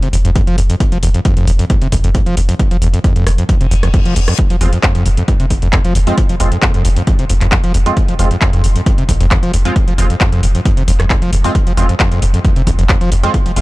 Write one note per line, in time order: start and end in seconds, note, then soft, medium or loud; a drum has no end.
0.02 0.13 F1 medium
0.02 0.08 C3 medium
0.02 closed hi-hat soft
0.13 0.24 F1 loud
0.13 0.17 F2 medium
0.13 open hi-hat loud
0.25 0.35 F1 medium
0.25 0.31 F2 medium
0.25 closed hi-hat medium
0.35 0.42 F2 loud
0.35 kick loud
0.35 closed hi-hat medium
0.47 0.57 F1 medium
0.47 0.56 F3 loud
0.47 closed hi-hat soft
0.58 0.69 F1 loud
0.58 0.62 E2 medium
0.58 open hi-hat loud
0.70 0.76 F2 medium
0.70 closed hi-hat medium
0.80 0.84 F2 medium
0.80 kick loud
0.80 closed hi-hat medium
0.92 1.02 F1 medium
0.92 0.98 F3 medium
0.92 closed hi-hat medium
1.03 1.14 F1 loud
1.03 1.09 E2 medium
1.03 open hi-hat loud
1.14 1.20 F2 medium
1.14 closed hi-hat soft
1.25 1.35 F2 medium
1.25 kick loud
1.25 closed hi-hat medium
1.37 1.47 F1 medium
1.37 1.46 F2 loud
1.37 closed hi-hat soft
1.47 1.59 F1 loud
1.47 1.51 F2 medium
1.47 open hi-hat loud
1.59 1.65 F2 medium
1.59 closed hi-hat medium
1.70 1.76 F2 medium
1.70 kick loud
1.70 closed hi-hat medium
1.82 1.92 F1 medium
1.82 1.87 C3 medium
1.82 closed hi-hat soft
1.92 2.03 F1 loud
1.92 1.96 F2 medium
1.92 kick medium
1.92 open hi-hat loud
2.04 2.14 F1 medium
2.04 2.10 F2 medium
2.04 closed hi-hat medium
2.15 2.21 F2 loud
2.15 kick loud
2.15 closed hi-hat medium
2.26 2.36 F1 medium
2.26 2.35 F3 loud
2.26 closed hi-hat soft
2.37 2.49 F1 loud
2.37 2.41 E2 medium
2.37 open hi-hat loud
2.49 2.55 F2 medium
2.49 closed hi-hat medium
2.59 2.63 F2 medium
2.59 kick loud
2.59 closed hi-hat medium
2.71 2.81 F1 medium
2.71 2.77 F3 medium
2.71 closed hi-hat medium
2.82 2.93 F1 loud
2.82 2.88 E2 medium
2.82 open hi-hat loud
2.94 2.99 F2 medium
2.94 closed hi-hat medium
3.04 3.14 F2 medium
3.04 kick loud
3.04 closed hi-hat medium
3.16 3.26 F1 medium
3.16 3.25 F2 loud
3.16 closed hi-hat medium
3.27 3.38 F1 loud
3.27 3.30 F2 medium
3.27 cross-stick medium
3.27 open hi-hat loud
3.38 3.44 F2 medium
3.38 closed hi-hat medium
3.49 3.55 F2 medium
3.49 kick loud
3.49 closed hi-hat medium
3.49 reverse cymbal medium
3.61 3.71 F1 medium
3.61 3.67 C3 medium
3.61 closed hi-hat medium
3.71 3.83 F1 loud
3.71 3.75 F2 medium
3.71 open hi-hat loud
3.83 3.94 F1 medium
3.83 3.89 F2 medium
3.83 cross-stick medium
3.83 closed hi-hat medium
3.94 4.00 F2 loud
3.94 kick loud
3.94 closed hi-hat medium
4.05 4.16 F1 medium
4.05 4.14 F3 loud
4.05 closed hi-hat medium
4.16 4.28 F1 loud
4.16 4.20 E2 medium
4.16 open hi-hat loud
4.28 4.34 F2 medium
4.28 cross-stick medium
4.28 closed hi-hat medium
4.38 4.42 F2 medium
4.38 kick loud
4.38 closed hi-hat medium
4.50 4.60 F1 medium
4.50 4.56 F3 medium
4.50 closed hi-hat medium
4.61 4.72 F1 loud
4.61 4.67 E2 medium
4.61 4.70 G#3 medium
4.61 4.70 C4 medium
4.61 4.70 F4 medium
4.61 open hi-hat loud
4.73 4.79 F2 medium
4.73 closed hi-hat medium
4.83 4.93 F2 medium
4.83 kick loud
4.83 clap loud
4.83 closed hi-hat medium
4.95 5.05 F1 medium
4.95 5.04 F2 loud
4.95 closed hi-hat medium
5.06 5.17 F1 medium
5.06 5.10 F2 medium
5.06 open hi-hat loud
5.17 5.23 F2 medium
5.17 closed hi-hat medium
5.28 5.35 F2 medium
5.28 kick loud
5.28 closed hi-hat medium
5.40 5.50 F1 medium
5.40 5.46 C3 medium
5.40 closed hi-hat medium
5.50 5.62 F1 loud
5.50 5.54 F2 medium
5.50 kick medium
5.50 open hi-hat loud
5.62 5.73 F1 medium
5.62 5.68 F2 medium
5.62 closed hi-hat medium
5.73 5.79 F2 loud
5.73 kick loud
5.73 clap loud
5.73 closed hi-hat medium
5.85 5.95 F1 medium
5.85 5.93 F3 loud
5.85 closed hi-hat medium
5.95 6.07 F1 loud
5.95 5.99 E2 medium
5.95 open hi-hat loud
6.07 6.13 F2 medium
6.07 6.15 G#3 loud
6.07 6.15 C4 loud
6.07 6.15 F4 loud
6.07 closed hi-hat medium
6.18 6.22 F2 medium
6.18 kick loud
6.18 closed hi-hat medium
6.29 6.39 F1 medium
6.29 6.35 F3 medium
6.29 closed hi-hat medium
6.40 6.52 F1 loud
6.40 6.47 E2 medium
6.40 6.49 G#3 medium
6.40 6.49 C4 medium
6.40 6.49 F4 medium
6.40 open hi-hat loud
6.52 6.58 F2 medium
6.52 closed hi-hat medium
6.62 6.72 F2 medium
6.62 kick loud
6.62 clap loud
6.62 closed hi-hat medium
6.74 6.84 F1 medium
6.74 6.83 F2 loud
6.74 closed hi-hat medium
6.85 6.96 F1 medium
6.85 6.89 F2 medium
6.85 open hi-hat loud
6.96 7.02 F2 medium
6.96 closed hi-hat medium
7.07 7.14 F2 medium
7.07 kick loud
7.07 closed hi-hat medium
7.19 7.29 F1 medium
7.19 7.25 C3 medium
7.19 closed hi-hat medium
7.30 7.41 F1 loud
7.30 7.33 F2 medium
7.30 open hi-hat loud
7.41 7.52 F1 medium
7.41 7.47 F2 medium
7.41 clap soft
7.41 closed hi-hat medium
7.52 7.58 F2 loud
7.52 kick loud
7.52 clap loud
7.52 closed hi-hat medium
7.64 7.74 F1 medium
7.64 7.73 F3 loud
7.64 closed hi-hat medium
7.74 7.86 F1 loud
7.74 7.78 E2 medium
7.74 open hi-hat loud
7.86 7.92 F2 medium
7.86 7.94 G#3 loud
7.86 7.94 C4 medium
7.86 7.94 F4 loud
7.86 closed hi-hat medium
7.97 8.01 F2 medium
7.97 kick loud
7.97 closed hi-hat medium
8.08 8.19 F1 medium
8.08 8.14 F3 medium
8.08 closed hi-hat medium
8.19 8.31 F1 loud
8.19 8.26 E2 medium
8.19 8.28 G#3 medium
8.19 8.28 C4 medium
8.19 8.28 F4 medium
8.19 open hi-hat loud
8.31 8.37 F2 medium
8.31 closed hi-hat medium
8.41 8.51 F2 medium
8.41 kick loud
8.41 clap loud
8.41 closed hi-hat medium
8.53 8.63 F1 medium
8.53 8.62 F2 loud
8.53 closed hi-hat medium
8.64 8.75 F1 loud
8.64 8.68 F2 medium
8.64 open hi-hat loud
8.76 8.82 F2 medium
8.76 closed hi-hat medium
8.86 8.93 F2 medium
8.86 kick loud
8.86 closed hi-hat medium
8.98 9.08 F1 medium
8.98 9.04 C3 medium
8.98 closed hi-hat medium
9.09 9.20 F1 loud
9.09 9.13 F2 medium
9.09 kick medium
9.09 open hi-hat loud
9.20 9.31 F1 medium
9.20 9.26 F2 medium
9.20 closed hi-hat medium
9.31 9.38 F2 loud
9.31 kick loud
9.31 clap loud
9.31 closed hi-hat medium
9.43 9.53 F1 medium
9.43 9.52 F3 loud
9.43 closed hi-hat medium
9.53 9.65 F1 loud
9.53 9.57 E2 medium
9.53 open hi-hat loud
9.65 9.71 F2 medium
9.65 9.73 G#3 loud
9.65 9.73 C4 medium
9.65 9.73 F4 loud
9.65 closed hi-hat medium
9.76 9.80 F2 medium
9.76 kick loud
9.76 closed hi-hat medium
9.88 9.98 F1 medium
9.88 9.93 F3 medium
9.88 closed hi-hat soft
9.98 10.10 F1 loud
9.98 10.05 E2 medium
9.98 10.07 G#3 medium
9.98 10.07 C4 medium
9.98 10.07 F4 medium
9.98 open hi-hat loud
10.10 10.16 F2 medium
10.10 closed hi-hat soft
10.21 10.30 F2 medium
10.21 kick loud
10.21 clap loud
10.21 closed hi-hat medium
10.32 10.42 F1 medium
10.32 10.41 F2 loud
10.32 closed hi-hat soft
10.43 10.55 F1 loud
10.43 10.47 F2 medium
10.43 open hi-hat loud
10.55 10.61 F2 medium
10.55 closed hi-hat medium
10.65 10.72 F2 medium
10.65 kick loud
10.65 closed hi-hat medium
10.77 10.87 F1 medium
10.77 10.83 C3 medium
10.77 closed hi-hat medium
10.88 10.99 F1 loud
10.88 10.92 F2 medium
10.88 open hi-hat loud
11.00 11.10 F1 medium
11.00 11.05 F2 medium
11.00 cross-stick medium
11.00 clap soft
11.00 closed hi-hat medium
11.10 11.17 F2 loud
11.10 kick loud
11.10 clap loud
11.10 closed hi-hat medium
11.22 11.32 F1 medium
11.22 11.31 F3 loud
11.22 closed hi-hat soft
11.33 11.44 F1 loud
11.33 11.36 E2 medium
11.33 open hi-hat loud
11.44 11.50 F2 medium
11.44 11.52 G#3 loud
11.44 11.52 C4 medium
11.44 11.52 F4 loud
11.44 open hi-hat medium
11.55 11.59 F2 medium
11.55 kick loud
11.55 closed hi-hat medium
11.67 11.77 F1 medium
11.67 11.73 F3 medium
11.67 closed hi-hat medium
11.77 11.89 F1 loud
11.77 11.84 E2 medium
11.77 11.86 G#3 medium
11.77 11.86 C4 medium
11.77 11.86 F4 medium
11.77 open hi-hat loud
11.89 11.95 F2 medium
11.89 closed hi-hat soft
12.00 12.09 F2 medium
12.00 kick loud
12.00 clap loud
12.00 closed hi-hat medium
12.11 12.22 F1 medium
12.11 12.20 F2 loud
12.11 closed hi-hat soft
12.22 12.34 F1 loud
12.22 12.26 F2 medium
12.22 open hi-hat loud
12.34 12.40 F2 medium
12.34 closed hi-hat medium
12.44 12.51 F2 medium
12.44 kick loud
12.44 closed hi-hat medium
12.56 12.66 F1 medium
12.56 12.62 C3 medium
12.56 closed hi-hat soft
12.67 12.78 F1 loud
12.67 12.71 F2 medium
12.67 kick medium
12.67 open hi-hat loud
12.79 12.89 F1 medium
12.79 12.84 F2 medium
12.79 closed hi-hat medium
12.89 12.96 F2 loud
12.89 kick loud
12.89 clap loud
12.89 closed hi-hat medium
13.01 13.11 F1 medium
13.01 13.10 F3 loud
13.01 closed hi-hat soft
13.12 13.23 F1 loud
13.12 13.16 E2 medium
13.12 open hi-hat loud
13.23 13.29 F2 medium
13.23 13.31 G#3 loud
13.23 13.31 C4 medium
13.23 13.31 F4 loud
13.23 closed hi-hat medium
13.34 13.38 F2 medium
13.34 kick loud
13.34 closed hi-hat medium
13.46 13.56 F1 medium
13.46 13.52 F3 medium
13.46 closed hi-hat medium
13.56 13.61 F1 loud
13.56 13.61 E2 medium
13.56 13.61 G#3 medium
13.56 13.61 C4 medium
13.56 13.61 F4 medium
13.56 open hi-hat loud